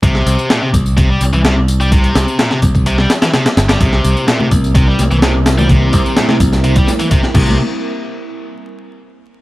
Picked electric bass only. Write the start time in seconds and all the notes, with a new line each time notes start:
0.03 C2
0.27 C2
0.74 C2
1.21 C2
1.33 C2
2.15 C2
2.63 C2
3.57 G1
3.81 C2
4.05 C2
4.52 C2
4.99 C2
5.11 C2
5.93 C2
6.40 C2
7.35 C2